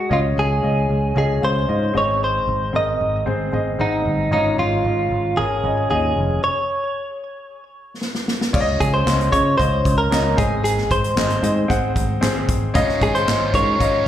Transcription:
Already playing: G#3 F#4 G#4 A#4
0.10 C#2 C#3 C#4 F4 D#5
0.37 C#2 G#4
0.62 C#2 C#4 F4 D#5
0.89 C#2
1.15 C#2 C#4 F4 G#4 D#5
1.41 C#2 C#4 F4 C5 F5
1.68 G#2 C#4 F4 D#5
1.94 G#1 G#2 C4 G#4 D#5
1.98 C#5
2.24 C5
2.47 G#1
2.73 G#1 C4 G#4 A#4 D#5
3.01 G#1
3.26 G#1 C4 G#4 C5
3.52 G#1 C4 G#4 D#5
3.79 G#1 C4 D#4 G#4 F#5
4.06 G1
4.31 G#1 G#2 C#4 D#4 F4 D#5
4.59 G#1 F4
4.84 G#1 C#4 F4 D#5
5.11 G#1
5.37 G#1 C#4 F4 G#4 A#4
5.63 G#1 C#4 F4 D#5
5.90 D#2 C#4 F4 G#4 D#5
6.16 F1
6.44 C#5
8.02 snare
8.15 snare
8.28 snare
8.41 snare
8.53 C#2 C#3 C#4 F4 D5, kick, crash
8.61 D#5
8.80 C#2 G#4, kick, closed hi-hat
8.94 C5
9.06 C#2 C#4 F4 D#5, snare, clap, closed hi-hat
9.21 closed hi-hat
9.31 C#3 C#4 F4 C#5 D#5, kick, closed hi-hat
9.58 C#2 C#4 F4 C5 D#5, kick, closed hi-hat
9.85 C#2, kick, closed hi-hat
9.98 A#4
10.10 C#2 C#4 F4 D#5, snare, clap, closed hi-hat
10.36 G#1 G#2 C4 G#4 D#5, kick, closed hi-hat
10.64 G#4, closed hi-hat
10.77 snare
10.91 G#1 C5, kick, closed hi-hat
11.04 closed hi-hat
11.16 G#1 C4 G#4 D#5, snare, clap, closed hi-hat
11.30 closed hi-hat
11.42 G#2 C4 G#4 D#5, closed hi-hat
11.68 G#1 C4 G#4 F#5, kick, closed hi-hat
11.96 G#1, kick, closed hi-hat
12.21 G#1 C4 G#4 C5, snare, clap, closed hi-hat
12.49 G#1, kick, closed hi-hat
12.74 G#1 G#2 C#4 D#4 F4 G#4 D#5, kick, closed hi-hat
12.89 snare
13.01 G#1 G#4, kick, closed hi-hat
13.14 C#4 D#4 F4 G#4 C5, closed hi-hat
13.26 G#1 C#4 F4 D#5, snare, clap, closed hi-hat
13.53 G#2 C#4 D#4 F4 G#4 A#4 C#5, kick, closed hi-hat
13.79 G#1 C#4 D#4 F4 G#4 D#5, kick, closed hi-hat

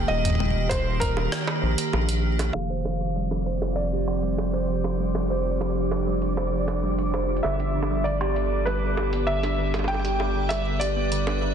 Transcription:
Already playing: D#3 A#3 G4 G5
0.08 D#1 D#5
0.25 kick, closed hi-hat
0.30 kick
0.35 kick
0.40 kick, high tom
0.45 kick
0.51 kick
0.69 C5, kick, closed hi-hat, high bongo
1.00 A#4, kick, closed hi-hat
1.17 high bongo
1.32 cross-stick, closed hi-hat
1.47 high bongo
1.63 A#1
1.78 closed hi-hat
1.93 A#1, high bongo
2.09 closed hi-hat
2.39 closed hi-hat, high bongo
2.53 F1 F3 C4 G4 D5 F5, high bongo
2.70 C5, closed hi-hat
2.85 F3, high bongo
3.01 F3
3.16 G3, closed hi-hat
3.31 F3, high bongo
3.46 C5, closed hi-hat
3.62 F4, high bongo
3.76 F3 D5, closed hi-hat
3.92 G4
4.08 F3, high bongo
4.23 G3, closed hi-hat
4.38 F3, high bongo
4.54 C5, closed hi-hat
4.69 F3
4.84 F3, closed hi-hat, high bongo
5.00 G3 D4
5.15 F3, closed hi-hat, high bongo
5.30 C5
5.45 F4
5.61 F3, closed hi-hat, high bongo
5.76 G4
5.91 F3, closed hi-hat, high bongo
6.07 G3
6.22 F3, closed hi-hat
6.37 C5, high bongo
6.53 F3
6.68 F3, closed hi-hat, high bongo
6.83 G3
6.98 F3, closed hi-hat
7.14 C5, high bongo
7.29 F4
7.37 closed hi-hat
7.43 G1 D3 G3 B3 A4 E5, high bongo
7.60 D4, closed hi-hat
7.75 D3
7.83 high bongo
7.90 G3
8.04 D3 D5, closed hi-hat
8.21 G4, high bongo
8.36 D3, closed hi-hat
8.51 D3
8.65 G3 B4, closed hi-hat, high bongo
8.82 D3
8.97 G4, high bongo
9.13 B3, closed hi-hat
9.27 D3 E5
9.43 D4, closed hi-hat, high bongo
9.59 D3
9.74 G3, closed hi-hat, high bongo
9.79 high bongo
9.84 G5, high bongo
9.89 D3 B4, high bongo
9.94 high bongo
10.00 high bongo
10.05 G4, closed hi-hat
10.20 D3, high bongo
10.35 D3
10.49 G3 E5, closed hi-hat, high bongo
10.66 D3
10.80 G4 D5, closed hi-hat
10.96 B3
11.12 D3, closed hi-hat
11.27 D4, high bongo
11.42 D3

